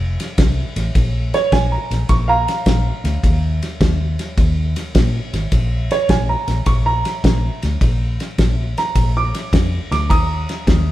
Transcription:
Already playing: F1
0.20 snare, ride
0.38 C2, kick, snare, ride
0.76 A1, snare, ride
0.95 A#1, kick, snare, ride
1.34 C#5, snare, ride
1.52 A#1 G#5, kick, snare, ride
1.72 A#5
1.91 A#1, snare, ride
2.09 A#1 C#6, kick, snare, ride
2.28 F5 A#5
2.48 snare, ride
2.66 A#1, kick, snare, ride
3.04 D2, snare, ride
3.24 D#2, kick, snare, ride
3.62 snare, ride
3.81 D#2, kick, snare, ride
4.19 snare, ride
4.38 D#2, kick, snare, ride
4.76 snare, ride
4.95 A#2, kick, snare, ride
5.33 G#1, snare, ride
5.52 A#1, kick, snare, ride
5.91 C#5, snare, ride
6.09 A#1 G#5, kick, snare, ride
6.29 A#5
6.48 A#1, snare, ride
6.66 A#1 C#6, kick, snare, ride
6.86 A#5
7.05 snare, ride
7.24 A#1, kick, snare, ride
7.62 D2, snare, ride
7.81 A#1, kick, snare, ride
8.20 snare, ride
8.38 A#1, kick, snare, ride
8.78 A#5, snare, ride
8.95 A#1, kick, snare, ride
9.17 D6
9.35 snare, ride
9.53 F2, kick, snare, ride
9.91 D2 D6, snare, ride
10.10 D#2 A#5 D#6, kick, snare, ride
10.49 snare, ride
10.67 D#2, kick, snare, ride

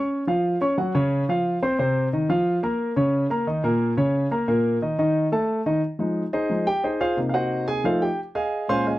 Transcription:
Already playing: C#4 C#5 C#6
0.27 F3 F4 F5
0.61 C#4 C#5 C#6
0.78 F#3 F#4 F#5
0.95 C#3 C#4 C#5
1.29 F3 F4 F5
1.62 C4 C5 C6
1.79 C3 C4 C5
2.13 D#3 D#4 D#5
2.29 F3 F4 F5
2.63 A#3 A#4 A#5
2.96 C#3 C#4 C#5
3.30 A#3 A#4 A#5
3.47 D#3 D#4 D#5
3.64 A#2 A#3 A#4
3.97 C#3 C#4 C#5
4.31 A#3 A#4 A#5
4.48 A#2 A#3 A#4
4.82 D#3 D#4 D#5
4.98 D#3 D#4 D#5
5.32 A3 A4 A5
5.66 D#3 D#4 D#5
5.99 F3 G#3 D#4
6.33 D#4 G#4 C5 D#5
6.50 F3 G#3 D#4
6.67 G4 G5
6.84 D#4 G#4 C5 D#5
7.01 F4 G#4 C5 F5
7.17 C3 A#3 D#4
7.29 F5
7.34 F#4 C5 D#5 F#5
7.68 G#4 G#5
7.84 F3 A3 D#4 F4 A4 C5 F5
8.02 G4 G5
8.35 G#4 D#5 F5 G#5
8.68 A#2 G#3 C#4 C5 F5 G#5 C6
8.87 G#4 D#5 F5 G#5

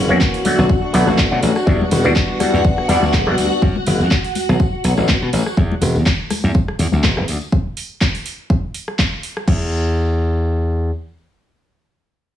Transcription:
Already playing: F#1 F#4 F#5
0.09 F#2 E3 F#3 A#3 C#4 F#4, tambourine
0.20 E3 A#3 C#4 F#4, kick, clap
0.34 open hi-hat
0.44 D3 F#3 A3 B3 D4 F#4, muted slap bass stroke, open hi-hat, tambourine, high conga
0.58 B1 D4 F#4, tambourine, low conga
0.69 kick, tambourine
0.82 D4 F#4, muted slap bass stroke
0.93 B1 D3 F#3 A3 B3 D4 E4 F#4, open hi-hat, tambourine
1.06 A1 D4 F#4, cross-stick, tambourine, high conga
1.18 B2 A3 D4, kick, clap, tambourine
1.31 B2 D3 F#3 A3 B3 F#4
1.43 A1, open hi-hat, tambourine
1.55 D4 F#4, cross-stick, tambourine
1.66 E2 E3 G3 B3 D4 F#4 F#5, kick, tambourine
1.81 high conga
1.91 E1 G3 B3 D4 F#4, open hi-hat, tambourine, low conga
2.04 E2 E3 G3 B3 D4 F#4, tambourine
2.15 G3 B3 D4 F#4, kick, clap
2.39 E3 G3 B3 D4 F#4, muted slap bass stroke, cross-stick, open hi-hat, tambourine, high conga
2.53 E2 B3 D4 F#4, tambourine
2.65 kick, tambourine
2.77 B3 D4 F#4, cross-stick
2.88 E2 E3 G3 B3 D4 E4 F#4, open hi-hat, tambourine, low conga
3.02 D2 B3 D4 F#4, tambourine, high conga
3.13 E1 G3 B3 D4 F#4, kick, clap
3.26 E1 E3 G3 B3 D4 F#4, cross-stick
3.38 D2, open hi-hat, tambourine
3.50 B3 D4 F#4, tambourine
3.62 F#2, kick, tambourine
3.76 muted slap bass stroke, high conga
3.87 F#1, open hi-hat, tambourine, low conga
4.00 F#2, tambourine
4.11 kick, clap
4.24 open hi-hat
4.35 muted slap bass stroke, open hi-hat, tambourine, high conga
4.49 B1, tambourine, low conga
4.60 kick, tambourine
4.73 muted slap bass stroke
4.84 B1, open hi-hat, tambourine
4.97 A1, cross-stick, tambourine, high conga
5.08 B2, kick, clap, tambourine
5.22 B2
5.33 A1, open hi-hat, tambourine
5.46 cross-stick, tambourine
5.57 E2, kick
5.72 high conga
5.81 E1, open hi-hat, tambourine, low conga
5.95 E2, tambourine
6.05 kick, clap, tambourine
6.30 muted slap bass stroke, cross-stick, open hi-hat, tambourine, high conga
6.44 E2, tambourine
6.54 kick, tambourine
6.68 cross-stick
6.79 E2, open hi-hat, tambourine, low conga
6.92 D2, tambourine, high conga
7.04 E1, kick, clap, tambourine
7.17 E1, cross-stick
7.28 D2, open hi-hat, tambourine
7.41 tambourine
7.52 kick
7.77 open hi-hat
8.01 kick, clap
8.15 open hi-hat
8.26 open hi-hat
8.50 kick
8.74 open hi-hat
8.88 cross-stick
8.99 kick, clap
9.23 open hi-hat
9.37 cross-stick
9.48 E2, kick, crash

